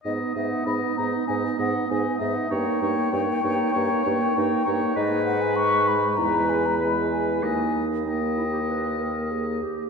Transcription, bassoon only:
\new Staff \with { instrumentName = "Bassoon" } { \clef bass \time 4/4 \key gis \minor \tempo 4 = 97 gis,8 gis,8 gis,8 gis,8 gis,8 gis,8 gis,8 gis,8 | g,8 g,8 g,8 g,8 g,8 g,8 g,8 g,8 | gis,2 e,2 | dis,2.~ dis,8 r8 | }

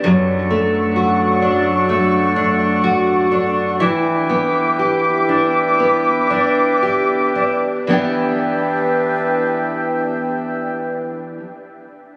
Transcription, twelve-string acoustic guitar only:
\new Staff \with { instrumentName = "Twelve-string acoustic guitar" } { \time 4/4 \key e \dorian \tempo 4 = 59 fis,8 a8 fis'8 d'8 a8 d'8 fis'8 d'8 | e8 b8 g'8 d'8 b8 d'8 g'8 d'8 | <e b d' g'>1 | }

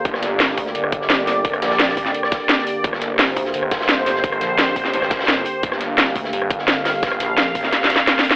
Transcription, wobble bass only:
\new Staff \with { instrumentName = "Wobble bass" } { \clef bass \time 4/4 \key g \minor \tempo 4 = 172 r4. d,8 g,,2~ | g,,8 bes,,4. r2 | r4. d,8 g,,2~ | g,,8 bes,,4. r2 |
r4. d,8 g,,2~ | g,,8 bes,,4. r2 | }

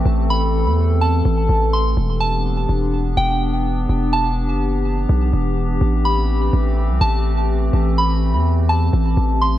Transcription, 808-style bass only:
\new Staff \with { instrumentName = "808-style bass" } { \clef bass \time 4/4 \key a \minor \tempo 4 = 125 a,,4~ a,,16 e,4~ e,16 a,,8 a,,4 | e,,4. e,,4 e,,4. | e,,4~ e,,16 fis,,4~ fis,,16 b,,8 e,,4 | a,,4. a,,8. c,16 a,,4. |
a,,4~ a,,16 e,4~ e,16 a,,8 a,,4 | }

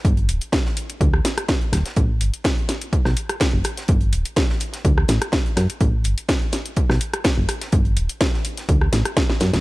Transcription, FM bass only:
\new Staff \with { instrumentName = "FM bass" } { \clef bass \time 4/4 \key g \lydian \tempo 4 = 125 g,,8 d,,16 r4 r16 d,8 r4 d,,16 r16 | a,,8 g,,16 r4. b,,16 r8. fis,,16 r8 | g,,8 d,,16 r4 r16 d,8 a,,16 r8. fis,16 r16 | a,,8 g,,16 r4. b,,16 r8. fis,,16 r8 |
g,,8 d,,16 r4 r16 d,8 a,,16 r8. fis,16 d,,16 | }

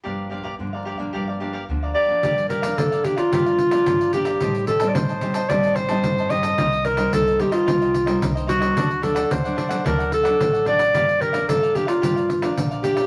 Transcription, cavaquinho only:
\new Staff \with { instrumentName = "Cavaquinho" } { \time 4/4 \key g \minor \tempo 4 = 110 <g' bes' d'' f''>8 <g' bes' d'' f''>16 <g' bes' d'' f''>16 r16 <bes' d'' f''>16 <g' bes' d'' f''>16 <bes' d'' f''>16 <g' bes' d'' f''>16 <bes' d'' f''>16 <g' bes' d'' f''>16 <g' bes' d'' f''>16 r16 <bes' d'' f''>16 <g' bes' d'' f''>8 | <g' bes' d'' f''>16 r16 <g' bes' d'' f''>16 <bes' d'' f''>8 <bes' d'' f''>16 <g' bes' d'' f''>16 <bes' d'' f''>16 <g' bes' d'' f''>16 <bes' d'' f''>16 r16 <bes' d'' f''>8 <bes' d'' f''>16 <g' bes' d'' f''>16 <bes' d'' f''>16 | <g' c'' ees'' a''>16 r16 <g' c'' ees'' a''>16 <c'' ees'' a''>8 <c'' ees'' a''>16 <g' c'' ees'' a''>16 <c'' ees'' a''>16 <g' c'' ees'' a''>16 <c'' ees'' a''>16 r16 <c'' ees'' a''>8 <c'' ees'' a''>16 <g' c'' ees'' a''>16 <c'' ees'' a''>16 | <ees' bes' c'' ees''>16 r16 <ees' bes' c'' ees''>16 <bes' c'' ees''>8 <bes' c'' ees''>16 <ees' bes' c'' ees''>16 <bes' c'' ees''>16 <ees' bes' c'' ees''>16 <bes' c'' ees''>16 r16 <bes' c'' ees''>8 <bes' c'' ees''>16 <ees' bes' c'' ees''>16 <bes' c'' ees''>16 |
<d' a' d'' fis''>16 r16 <d' a' d'' fis''>16 <a' d'' fis''>8 <a' d'' fis''>16 <d' a' d'' fis''>16 <a' d'' fis''>16 <d' a' d'' fis''>16 <a' d'' fis''>16 r16 <a' d'' fis''>8 <a' d'' fis''>16 <d' a' d'' fis''>16 <a' d'' fis''>16 | <g' bes' d'' f''>16 r16 <g' bes' d'' f''>16 <bes' d'' f''>8 <bes' d'' f''>16 <g' bes' d'' f''>16 <bes' d'' f''>16 <g' bes' d'' f''>16 <bes' d'' f''>16 r16 <bes' d'' f''>8 <bes' d'' f''>16 <g' bes' d'' f''>16 <bes' d'' f''>16 | }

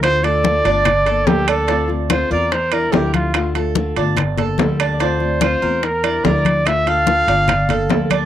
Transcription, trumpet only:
\new Staff \with { instrumentName = "Trumpet" } { \time 4/4 \key d \minor \tempo 4 = 145 c''8 d''2~ d''8 g'8 a'8~ | a'8 r8 c''8 d''8 c''8 bes'8 g'8 f'8~ | f'8 r2 r8 \tuplet 3/2 { r4 r16 d''16 } | c''4 c''4 bes'4 d''4 |
e''8 f''2. r8 | }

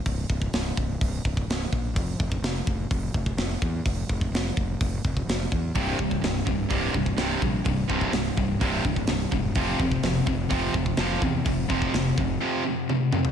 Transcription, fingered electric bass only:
\new Staff \with { instrumentName = "Fingered electric bass" } { \clef bass \time 4/4 \tempo 4 = 126 c,,8 c,,8 c,,8 c,,8 c,,8 c,,8 c,,8 bes,,8 | f,,8 f,,8 f,,8 f,,8 f,,8 f,,8 f,,8 e,8 | f,,8 f,,8 f,,8 f,,8 f,,8 f,,8 f,,8 e,8 | c,,8 c,,8 c,,8 c,,8 c,,8 c,,8 c,,8 bes,,8 |
c,,8 c,,8 c,,8 c,,8 c,,8 c,,8 c,,8 e,,8 | f,,8 f,,8 f,,8 f,,8 f,,8 f,,8 f,,8 e,8 | f,,8 f,,8 f,,8 f,,8 r2 | }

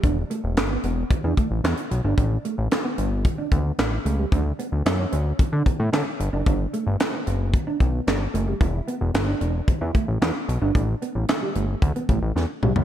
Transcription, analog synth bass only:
\new Staff \with { instrumentName = "Analog synth bass" } { \clef bass \time 4/4 \key e \dorian \tempo 4 = 112 e,,8 r16 e,,16 g,,8 e,,8 e,16 e,16 r16 a,,16 e,16 r16 b,,16 g,,16 | a,,8 r16 a,,16 r8 g,,8. r16 d,8 a,,8 cis,8 | d,8 r16 d,16 fis,8 d,8 d16 d16 r16 a,16 d16 r16 g,,16 fis,,16 | g,,8 r16 g,,16 r8 fis,,8. r16 b,,8 g,,8 fis,,8 |
e,,8 r16 e,,16 g,,8 e,,8 e,16 e,16 r16 a,,16 e,16 r16 b,,16 g,,16 | a,,8 r16 a,,16 r8 g,,8 d,16 r16 a,,16 a,,16 e,16 r16 b,,16 cis,16 | }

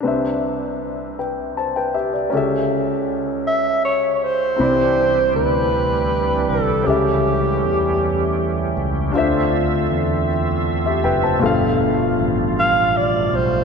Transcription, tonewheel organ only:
<<
  \new Staff \with { instrumentName = "Tonewheel organ" } { \time 6/8 \key c \major \tempo 4. = 53 r2. | r2. | g'2.~ | g'2. |
e''2. | f'2. | }
  \new Staff \with { instrumentName = "Tonewheel organ" } { \clef bass \time 6/8 \key c \major << { r2. | r2. | <e g d'>2. | <e g cis'>2. |
<d c' f'>2. | <b, f g>2. | } \\ { r2. | r2. | c'2. | a2.~ |
a2.~ | a2. | } >> }
>>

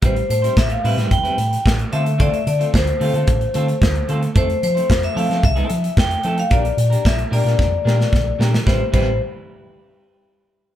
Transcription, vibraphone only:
\new Staff \with { instrumentName = "Vibraphone" } { \time 4/4 \key a \phrygian \tempo 4 = 111 c''8 c''8 e''16 f''16 e''8 g''4 r8 e''8 | d''16 e''16 d''8 c''2~ c''8 r8 | c''8 c''8. e''16 f''8 e''4 g''8. f''16 | d''4 e''8 d''2 r8 |
c''16 r16 c''8 r2. | }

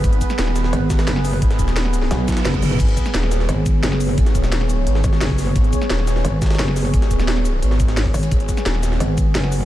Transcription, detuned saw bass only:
\new Staff \with { instrumentName = "Detuned saw bass" } { \clef bass \time 4/4 \key gis \minor \tempo 4 = 174 gis,,8 r8 dis,,4 r2 | gis,,8 dis,,4. r2 | gis,,8 r8 dis,,4 r2 | gis,,8 dis,,4. gis,,8 r4. |
gis,,8 r8 dis,,4 r2 | gis,,8 dis,,4. gis,,4. r8 | gis,,8 r8 dis,,4 r2 | }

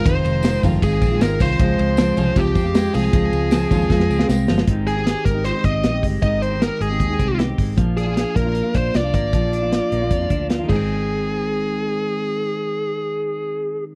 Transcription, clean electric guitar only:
\new Staff \with { instrumentName = "Clean electric guitar" } { \time 4/4 \key aes \major \tempo 4 = 155 <ees aes c' f'>8 aes8 c'8 f'8 aes8 c'8 aes8 f'8 | aes8 aes8 c'8 f'8 aes8 c'8 aes8 f'8 | aes8 aes8 c'8 f'8 aes8 c'8 aes8 f'8 | ees8 c'8 g'8 aes8 f'16 g'16 c'8 g'8 aes8 |
ees8 c'8 g'8 aes4 c'8 g'8 aes8 | f8 d'8 f'8 bes8 f'8 d'8 f'8 bes8 | f8 d'8 f'8 bes8 f'8 d'8 f'8 <ees aes c'>8~ | <ees aes c'>1~ |
<ees aes c'>1 | }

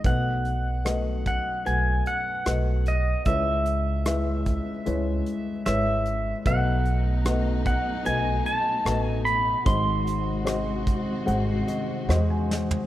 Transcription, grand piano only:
<<
  \new Staff \with { instrumentName = "Grand piano" } { \time 4/4 \key b \mixolydian \tempo 4 = 75 << { r1 | r1 | r1 | r2 r8 dis''8 fis''16 gis''8. | } \\ { <a fis' b' dis''>4 <a fis' b' dis''>4 <a fis' b' fis''>4 <a fis' b' dis''>4 | <gis e' b' cis''>4 <gis e' b' e''>4 <gis e' b' cis''>4 <gis e' b' cis''>4 | <a fis' b' dis''>4 <a fis' b' dis''>4 <a fis' b' dis''>4 <a fis' b' dis''>4 | <gis fis' bis' dis''>4 <gis fis' bis' dis''>4 <gis fis' bis' fis''>4 <gis fis' bis' dis''>4 | } >> }
  \new Staff \with { instrumentName = "Grand piano" } { \clef bass \time 4/4 \key b \mixolydian <b,, b,>1 | <cis, cis>1 | <b,, b,>1 | <gis,, gis,>1 | }
>>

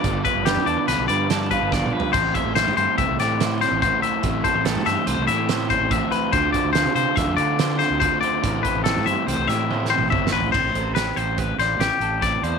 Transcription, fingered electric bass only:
\new Staff \with { instrumentName = "Fingered electric bass" } { \clef bass \time 5/4 \key a \minor \tempo 4 = 143 g,,8 r16 g,,8 g,16 e,16 r16 b,,16 b,,16 g,4~ g,16 g,,8 r8. | a,,8 r16 a,,8 a,16 g,16 r16 c,16 c,16 a,4~ a,16 a,,8 r8. | a,,8 r16 a,,8 a,16 g,16 r16 c,16 c,16 a,4~ a,16 a,,8 r8. | d,8 r16 d,8 d16 c16 r16 f,16 f,16 d4~ d16 d,8 r8. |
a,,8 r16 a,,8 a,16 g,16 r16 c,16 c,16 a,4~ a,16 a,,16 g,,8 a,,8 | a,,16 a,,16 a,,4 a,,4 a,,8 a,,16 r16 a,,4 e,8 | }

